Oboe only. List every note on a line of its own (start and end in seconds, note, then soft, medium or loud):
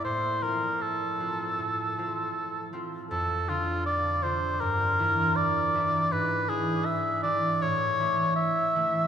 0.05 0.44 C5 medium
0.43 0.83 A#4 medium
0.81 2.72 A4 soft
3.11 3.51 A4 medium
3.49 3.85 F4 medium
3.86 4.24 D5 medium
4.23 4.62 C5 medium
4.61 5.38 A#4 medium
5.36 6.13 D5 medium
6.12 6.51 B4 medium
6.49 6.87 G#4 medium
6.85 7.22 E5 medium
7.23 7.63 D5 medium
7.62 8.35 C#5 medium
8.36 9.07 E5 medium